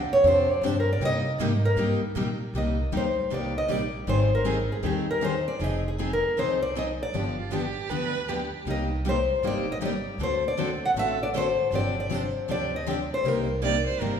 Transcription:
Already playing: upright bass D#2, steel-string acoustic guitar D5
0.13 steel-string acoustic guitar C#5
0.23 upright bass F2, steel-string acoustic guitar C3 F3 C4 D4 G4
0.28 steel-string acoustic guitar C5
0.51 steel-string acoustic guitar D5
0.61 upright bass G2, steel-string acoustic guitar C3 F3 C4 D4 G4
0.66 steel-string acoustic guitar C5
0.80 steel-string acoustic guitar A#4
0.93 steel-string acoustic guitar D5
1.00 upright bass C3, steel-string acoustic guitar C3 G3 A#3 D#4 G4
1.05 steel-string acoustic guitar D#5
1.38 upright bass G#2, steel-string acoustic guitar C3 G3 A#3 D#4 G4
1.65 steel-string acoustic guitar A#4
1.76 upright bass G2, steel-string acoustic guitar C3 G3 A#3 D#4 G4
2.01 muted upright bass stroke
2.15 upright bass A#2, steel-string acoustic guitar C3 G3 A#3 D#4 G4
2.54 upright bass C2, steel-string acoustic guitar C3 G3 A#3 D#4 G4 D#5
2.92 upright bass D2, steel-string acoustic guitar C3 G3 A#3 D#4 G4
2.97 steel-string acoustic guitar C5
3.30 upright bass C2, steel-string acoustic guitar C3 G3 A#3 D#4 G4 D5
3.58 steel-string acoustic guitar D#5
3.68 upright bass A#1, steel-string acoustic guitar C3 G3 A#3 D#4 G4 D5
4.07 upright bass G#1, steel-string acoustic guitar D#3 G3 C4 D#4 G#4 C5
4.35 steel-string acoustic guitar A#4
4.45 steel-string acoustic guitar D#3 G3 C4 D#4 G#4
4.72 steel-string acoustic guitar G#4
4.83 upright bass D#2, steel-string acoustic guitar D#3 G3 C4 D#4 G4 G#4
5.11 steel-string acoustic guitar A#4
5.21 steel-string acoustic guitar D#3 G3 C4 D#4 G#4 C5
5.48 steel-string acoustic guitar D5
5.59 upright bass F1, steel-string acoustic guitar F3 C4 D#4 G#4
5.64 steel-string acoustic guitar D#5
5.88 steel-string acoustic guitar G#4
5.99 steel-string acoustic guitar F3 C4 D#4 G#4
6.13 steel-string acoustic guitar A#4
6.36 upright bass C2, steel-string acoustic guitar F3 C4 D#4 G#4 C5
6.62 steel-string acoustic guitar D5
6.76 steel-string acoustic guitar F3 C4 D#4 G#4 D#5
7.03 steel-string acoustic guitar D5
7.13 upright bass G1, steel-string acoustic guitar D3 F3 B3 D4 G4
7.37 violin F4
7.52 steel-string acoustic guitar D3 F3 B3 D4 G4, violin G4
7.89 upright bass D2, steel-string acoustic guitar D3 F3 B3 D4 G4, violin B4
8.29 steel-string acoustic guitar D3 F3 B3 D4 G4, violin G4
8.65 upright bass C2, steel-string acoustic guitar C3 G3 A#3 D#4 G4
8.70 steel-string acoustic guitar D#5
9.05 steel-string acoustic guitar C3 G3 A#3 D#4 G4 C5
9.42 upright bass G1, steel-string acoustic guitar C3 G3 A#3 D#4 G4
9.47 steel-string acoustic guitar D5
9.72 steel-string acoustic guitar D#5
9.81 steel-string acoustic guitar C3 G3 A#3 D#4 G4
9.85 steel-string acoustic guitar D5
10.18 upright bass D2, steel-string acoustic guitar D3 A3 C4 F#4 A4
10.23 steel-string acoustic guitar C5
10.48 steel-string acoustic guitar D5
10.58 steel-string acoustic guitar D3 A3 C4 F#4 A4
10.85 steel-string acoustic guitar F#5
10.94 upright bass A1, steel-string acoustic guitar D3 A3 C4 F#4 A4
10.99 steel-string acoustic guitar E5
11.23 steel-string acoustic guitar D5
11.36 steel-string acoustic guitar D3 A3 C4 F#4 A4 C5
11.71 upright bass G1, steel-string acoustic guitar C3 F3 C4 D4 G4
11.75 steel-string acoustic guitar D5
12.00 steel-string acoustic guitar D5
12.09 steel-string acoustic guitar C3 F3 C4 D4 G4
12.14 steel-string acoustic guitar C5
12.48 upright bass D2, steel-string acoustic guitar C3 F3 C4 D4 G4 D5
12.76 steel-string acoustic guitar D#5
12.87 steel-string acoustic guitar C3 F3 C4 D4 G4
12.91 steel-string acoustic guitar D5
13.14 steel-string acoustic guitar C5
13.23 upright bass C2, steel-string acoustic guitar C3 G3 A#3 D#4 G4
13.28 steel-string acoustic guitar A#4
13.62 steel-string acoustic guitar C3 G3 A#3 D#4 G4, violin D5
13.87 violin C5
13.99 upright bass G1, steel-string acoustic guitar C3 G3 A#3 D#4 G4, violin A#4

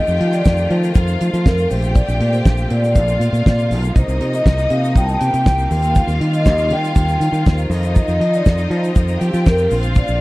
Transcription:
Already playing: string section D#3 F3 A3 C4 F4 G4 G5, vibraphone D#5
0.07 fingered electric bass F2, shaker
0.20 fingered electric bass F3, closed hi-hat
0.33 vibraphone D5, closed hi-hat, shaker
0.45 fingered electric bass F2, kick, snare, shaker
0.57 closed hi-hat, shaker
0.70 fingered electric bass F3, vibraphone C5, closed hi-hat
0.84 closed hi-hat, shaker
0.95 fingered electric bass F2, string section F4 F5, kick, closed hi-hat, shaker
1.08 shaker
1.21 fingered electric bass F3, closed hi-hat, shaker
1.33 fingered electric bass F3, closed hi-hat, shaker
1.46 fingered electric bass F2, vibraphone A#4, kick, snare, shaker
1.58 closed hi-hat, shaker
1.71 fingered electric bass A#1, string section C3 A#3 C4 G4 G5, vibraphone C5, open hi-hat, shaker
1.82 closed hi-hat, shaker
1.95 vibraphone D5, kick, closed hi-hat, shaker
2.08 fingered electric bass A#1, shaker
2.20 fingered electric bass A#2, closed hi-hat
2.33 vibraphone C5, closed hi-hat, shaker
2.45 fingered electric bass A#1, kick, snare, shaker
2.58 shaker
2.70 fingered electric bass A#2, vibraphone D5, closed hi-hat
2.84 closed hi-hat, shaker
2.95 fingered electric bass A#1, string section F4 F5, kick, closed hi-hat, shaker
3.08 closed hi-hat, shaker
3.20 fingered electric bass A#2, closed hi-hat, shaker
3.33 fingered electric bass A#2, closed hi-hat, shaker
3.46 fingered electric bass A#2, kick, snare, shaker
3.59 closed hi-hat, shaker
3.71 fingered electric bass B1, snare, open hi-hat, shaker
3.83 closed hi-hat, shaker
3.95 fingered electric bass C2, string section F3 C4 D#4 D#5, vibraphone C5, kick, closed hi-hat, shaker
4.08 fingered electric bass C2, closed hi-hat, shaker
4.20 fingered electric bass C3, closed hi-hat
4.33 vibraphone D#5, closed hi-hat, shaker
4.46 fingered electric bass C2, kick, snare, shaker
4.58 shaker
4.70 fingered electric bass C3, vibraphone F5, closed hi-hat
4.84 closed hi-hat, shaker
4.95 fingered electric bass C2, vibraphone G5, kick, closed hi-hat, shaker
5.05 vibraphone A5, shaker
5.12 vibraphone G5
5.21 fingered electric bass C3, string section G4 G5, closed hi-hat, shaker
5.34 fingered electric bass C3, closed hi-hat, shaker
5.46 fingered electric bass C2, vibraphone G5, kick, snare, shaker
5.58 shaker
5.71 fingered electric bass D#2, string section D#3 G3 F4 F5, snare, open hi-hat, shaker
5.82 closed hi-hat, shaker
5.95 vibraphone F5, kick, closed hi-hat, shaker
6.07 fingered electric bass D#2, closed hi-hat, shaker
6.20 fingered electric bass D#3, closed hi-hat
6.33 vibraphone D#5, closed hi-hat, shaker
6.46 fingered electric bass D#2, kick, snare, shaker
6.58 shaker
6.70 fingered electric bass D#3, vibraphone G5, closed hi-hat
6.84 closed hi-hat, shaker
6.96 fingered electric bass D#2, kick, closed hi-hat, shaker
7.08 closed hi-hat, shaker
7.20 fingered electric bass D#3, closed hi-hat, shaker
7.32 fingered electric bass D#3, closed hi-hat, shaker
7.46 fingered electric bass D#2, vibraphone C5, kick, snare, shaker
7.58 closed hi-hat, shaker
7.70 fingered electric bass F2, string section F3 C4 D#4 D#5, snare, open hi-hat, shaker
7.83 closed hi-hat, shaker
7.96 vibraphone D#5, kick, closed hi-hat, shaker
8.08 fingered electric bass F2, closed hi-hat, shaker
8.20 fingered electric bass F3, closed hi-hat
8.34 vibraphone D5, closed hi-hat, shaker
8.46 fingered electric bass F2, kick, snare, shaker
8.58 closed hi-hat, shaker
8.70 fingered electric bass F3, vibraphone C5, closed hi-hat
8.84 closed hi-hat, shaker
8.96 fingered electric bass F2, kick, closed hi-hat, shaker
9.08 shaker
9.20 fingered electric bass F3, string section G4 G5, closed hi-hat, shaker
9.34 fingered electric bass F3, closed hi-hat, shaker
9.46 fingered electric bass F2, vibraphone A#4, kick, snare, shaker
9.58 closed hi-hat, shaker
9.71 fingered electric bass A#1, string section D3 A#3 F4 F5, open hi-hat, shaker
9.83 closed hi-hat, shaker
9.95 vibraphone D5, kick, closed hi-hat, shaker
10.08 fingered electric bass A#1, shaker

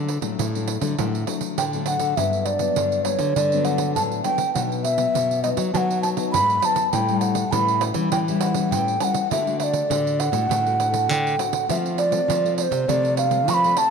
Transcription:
Already playing: nylon-string guitar D3
0.08 pandeiro
0.21 nylon-string guitar A2 F#3 A3 D4, pandeiro
0.39 nylon-string guitar A2, pandeiro
0.55 nylon-string guitar F#3 A3 D4, pandeiro
0.68 pandeiro
0.81 nylon-string guitar D3 F#3 A3 D4, pandeiro
0.98 nylon-string guitar A2 D3 F#3 A3 D4, pandeiro
1.15 pandeiro
1.27 nylon-string guitar F#3 A3 D4, pandeiro
1.41 pandeiro
1.58 nylon-string guitar A2 D3, flute G5, pandeiro
1.73 nylon-string guitar F#3 A3 D4, pandeiro
1.86 flute F#5, pandeiro
1.99 nylon-string guitar D3, pandeiro
2.17 nylon-string guitar G2 F#3 B3 D4, flute E5, pandeiro
2.33 pandeiro
2.46 flute D5, pandeiro
2.59 nylon-string guitar F#3 B3 D4, pandeiro
2.76 nylon-string guitar G2 D3, pandeiro
2.92 pandeiro
3.05 nylon-string guitar F#3 B3 D4, flute C#5, pandeiro
3.19 nylon-string guitar D3, pandeiro
3.36 nylon-string guitar G2 D3, flute D5, pandeiro
3.52 nylon-string guitar F#3 B3 D4, pandeiro
3.65 flute F#5, pandeiro
3.78 pandeiro
3.95 nylon-string guitar A2 D3 F#3 B3 D4, flute A5, pandeiro
4.12 pandeiro
4.24 nylon-string guitar F#3 B3 D4, flute G5, pandeiro
4.38 pandeiro
4.54 nylon-string guitar B2 F#3 B3 D#4, flute F#5, pandeiro
4.72 pandeiro
4.84 flute E5, pandeiro
4.97 nylon-string guitar F#3 B3, pandeiro
5.15 nylon-string guitar F#2 B2, pandeiro
5.31 pandeiro
5.43 nylon-string guitar F#3 B3 D#4, flute D#5, pandeiro
5.57 nylon-string guitar F#3, pandeiro
5.74 nylon-string guitar B2 F#3 B3 D#4, flute F#5 A5, pandeiro
5.90 pandeiro
6.02 flute A5, pandeiro
6.16 nylon-string guitar F#3 B3 D#4, pandeiro
6.32 nylon-string guitar F#2 G#2, flute B5, pandeiro
6.50 pandeiro
6.60 nylon-string guitar F#3 B3 D#4, flute B5, pandeiro
6.65 flute A5
6.76 pandeiro
6.92 nylon-string guitar A2 G3 C#4 E4, flute G5, pandeiro
7.09 nylon-string guitar G3 C#4 E4, pandeiro
7.20 flute F#5, pandeiro
7.35 pandeiro
7.51 nylon-string guitar A2 E3 G3 C#4 E4, flute B5, pandeiro
7.68 pandeiro
7.81 pandeiro
7.94 nylon-string guitar E3 G3 C#4 E4, pandeiro
8.12 nylon-string guitar A2 E3, flute G5, pandeiro
8.28 nylon-string guitar G3 C#4 E4, pandeiro
8.41 flute F#5, pandeiro
8.54 nylon-string guitar G3 C#4 E4, pandeiro
8.71 nylon-string guitar A2 E3, flute G5, pandeiro
8.88 pandeiro
9.00 nylon-string guitar G3 C#4 E4, flute F#5 A5, pandeiro
9.14 pandeiro
9.31 nylon-string guitar D3 A3 D4 F#4, flute E5, pandeiro
9.47 nylon-string guitar A3 D4 F#4, pandeiro
9.60 flute D5 E5, pandeiro
9.73 pandeiro
9.90 nylon-string guitar A2 D3 A3 D4 F#4, pandeiro
10.07 pandeiro
10.20 flute F#5, pandeiro
10.32 nylon-string guitar A2 A3 D4 F#4, pandeiro
10.49 nylon-string guitar A2 D3, pandeiro
10.66 nylon-string guitar A3 D4 F#4, pandeiro
10.80 pandeiro
10.92 nylon-string guitar A3 D4 F#4, pandeiro
11.09 nylon-string guitar A2 D3, flute G5, pandeiro
11.27 pandeiro
11.38 nylon-string guitar A3 D4 F#4, flute F#5, pandeiro
11.53 pandeiro
11.69 nylon-string guitar F3 A3 C4 F4, flute E5, pandeiro
11.86 pandeiro
11.98 flute D5, pandeiro
12.11 nylon-string guitar A3 C4 F4, pandeiro
12.28 nylon-string guitar C3 F3, pandeiro
12.44 nylon-string guitar A3 C4 F4, pandeiro
12.58 flute D5, pandeiro
12.62 flute C5
12.71 nylon-string guitar C3, pandeiro
12.87 nylon-string guitar C3 F3 A3 C4 F4, flute D5, pandeiro
13.05 pandeiro
13.17 flute F5, pandeiro
13.30 nylon-string guitar A3 C4 F4, pandeiro
13.48 nylon-string guitar C3 F3, flute C#6, pandeiro
13.54 flute B5
13.64 nylon-string guitar A3 C4 F4, pandeiro
13.77 flute A5, pandeiro

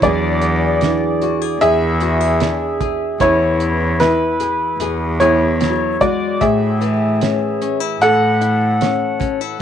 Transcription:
0.02 cello E2, nylon-string guitar E3 B3 D4 G#4, felt piano F#3, upright piano G#4 D5, kick, closed hi-hat
0.42 nylon-string guitar B3, closed hi-hat
0.81 felt piano E3, nylon-string guitar D4, snare, closed hi-hat
1.22 nylon-string guitar F#4, closed hi-hat
1.42 nylon-string guitar G#4
1.61 cello E2, nylon-string guitar G#4, upright piano G#4 E5, closed hi-hat
2.00 nylon-string guitar F#4, closed hi-hat
2.21 nylon-string guitar G#4
2.40 nylon-string guitar D4, snare, closed hi-hat
2.81 nylon-string guitar G#4, kick, closed hi-hat
3.20 cello E2, nylon-string guitar E3 C#4 E4 G#4, upright piano E4 C#5, kick, closed hi-hat
3.60 closed hi-hat
4.00 nylon-string guitar E4, upright piano E4 B4, snare, closed hi-hat
4.40 nylon-string guitar G#4, closed hi-hat
4.78 cello E2, nylon-string guitar G#4, closed hi-hat
5.20 felt piano B3, upright piano E4 C#5, nylon-string guitar G#4, closed hi-hat
5.46 felt piano E4
5.60 nylon-string guitar F#3, snare, closed hi-hat
5.70 felt piano F#4
6.01 nylon-string guitar G#3, upright piano F#4 D5, kick, closed hi-hat
6.41 nylon-string guitar A2, cello A2, upright piano G#4 E5, kick, closed hi-hat
6.81 nylon-string guitar E3, closed hi-hat
7.21 nylon-string guitar C#4, snare, closed hi-hat
7.61 nylon-string guitar C#4, closed hi-hat
7.80 nylon-string guitar E4
8.00 cello A2, upright piano A4 F#5, closed hi-hat
8.41 nylon-string guitar E4, closed hi-hat
8.81 nylon-string guitar C#4, snare, closed hi-hat
9.20 nylon-string guitar C#4, kick, closed hi-hat
9.41 nylon-string guitar E4

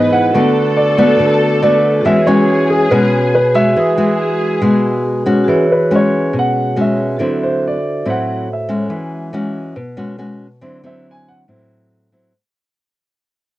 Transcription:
Already playing: nylon-string guitar G#2 E3 B3 D#4, vibraphone G#4 B4 D#5, violin section B4, grand piano D#5
0.10 vibraphone E4 G#4 B4 D#5, grand piano F#5
0.30 vibraphone F#4 A4, violin section A4
0.34 nylon-string guitar D3 A3 B3 F#4, vibraphone D5 C#6
0.77 grand piano D5
0.97 nylon-string guitar A3 B3 F#4, grand piano D5
1.19 nylon-string guitar D3
1.62 nylon-string guitar A3 B3 F#4, grand piano D5
2.01 nylon-string guitar E3, vibraphone F#4 G#4
2.05 nylon-string guitar G#3 C#4 F#4, violin section G#4, vibraphone B4 C#5, grand piano E5
2.27 nylon-string guitar G#3 C#4 F#4, grand piano C#5
2.70 grand piano G#4
2.91 nylon-string guitar B2 G#3 C#4 F#4, grand piano B4
3.34 grand piano B4
3.54 nylon-string guitar G#3 F#4, grand piano E5
3.73 nylon-string guitar E3, vibraphone F#4 G#4 B4, violin section G#4
3.79 vibraphone D#6
3.97 nylon-string guitar G#3 F#4
4.62 nylon-string guitar B2 G#3 F#4
5.26 nylon-string guitar G#3 C#4 F#4
5.44 nylon-string guitar E3, vibraphone F#4 G#4 B4
5.50 vibraphone C#5
5.72 grand piano B4
5.91 nylon-string guitar G#3 C#4 F#4
5.96 grand piano C#5
6.33 nylon-string guitar B2
6.39 grand piano F#5
6.76 nylon-string guitar G#3 C#4 F#4
6.81 grand piano E5
6.96 vibraphone F#4 G#4 B4 C#5
7.16 nylon-string guitar D3 F#3 C4, vibraphone F#4 A4 C5
7.21 nylon-string guitar E4, vibraphone E5
7.43 grand piano C5
7.67 grand piano D5
8.05 nylon-string guitar A2 F#3 C4 E4
8.10 grand piano F#5
8.53 grand piano E5
8.69 nylon-string guitar G#3 C#4 F#4
8.90 nylon-string guitar E3
9.33 nylon-string guitar G#3 C#4 F#4
9.76 nylon-string guitar B2
9.97 nylon-string guitar G#3 C#4 F#4
10.18 nylon-string guitar G#3 C#4 F#4
10.61 nylon-string guitar D3 F#3 C4 E4
10.84 nylon-string guitar F#3 C4 E4, grand piano E5
11.11 grand piano G#5
11.28 grand piano F#5
11.48 nylon-string guitar A2 F#3 C4 E4
12.12 nylon-string guitar F#3 C4 E4

